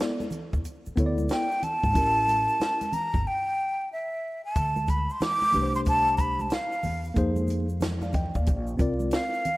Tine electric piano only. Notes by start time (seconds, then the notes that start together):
0.00 B3 E4 A4 D5
0.96 B3 E4 A4
1.00 C#5
1.06 D5
1.94 C#4 E4 G4 A#4
5.52 A3 D4 G4 B4
5.62 C5
7.14 A#3 D#4 G#4 C5
8.03 D5 F5
8.14 D#5 G5
8.36 D5 F5
8.77 C4 F4 A#4
8.81 D5